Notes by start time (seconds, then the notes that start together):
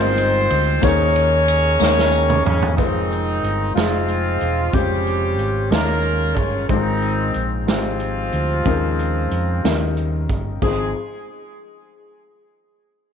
Already playing: G1 G#2 G#3 C4 D#4 F4 A#4 C5
0.17 ride bell, tambourine
0.50 D2, ride bell
0.81 D#2 D#3 A#3 C#4 D#4 G#4 A#4 C#5, kick, ride bell, tambourine
1.16 ride bell
1.48 ride bell, tambourine
1.80 D#2 D#3 A#3 C#4 D#4 C5 G5, snare, tambourine
1.89 C#5
1.99 snare
2.12 tambourine
2.30 mid tom
2.45 E2 C#3 C#4, mid tom
2.62 floor tom
2.76 F1 D#3 G#3 C4 D#4 F4 B4, kick, closed hi-hat
2.85 C5
3.12 closed hi-hat
3.43 G1, closed hi-hat
3.74 F1 F3 G#3 C4 D#4 F4 G#4, snare, closed hi-hat
4.08 closed hi-hat
4.41 E1, closed hi-hat
4.73 F1 C#3 G3 G#3 C4 C#4 F4 G4 C5, kick, closed hi-hat
5.07 closed hi-hat
5.38 G#1, closed hi-hat
5.70 D#2 D#3 G#3 A#3 C#4 D#4 F4 A#4 C#5, snare, closed hi-hat
6.03 closed hi-hat
6.36 G1 C#3 C#4, kick, closed hi-hat
6.69 G#1 G#2 D#3 G#3 C4 D#4 F4 C5, kick, closed hi-hat
7.02 closed hi-hat
7.34 A#1, closed hi-hat
7.66 G#1 F3 G#3 C4 D#4 F4 G4, snare, closed hi-hat
7.99 closed hi-hat
8.32 D2, closed hi-hat
8.64 D#2 C#3 D#3 G#3 D#4 A#4, kick, closed hi-hat
8.99 closed hi-hat
9.31 F2, closed hi-hat
9.63 D#2 C#3 D#3 G3 D#4 A#4, snare, closed hi-hat
9.97 closed hi-hat
10.29 G1, kick, closed hi-hat
10.62 G#1 F3 G#3 C4 D#4 G#4, kick, crash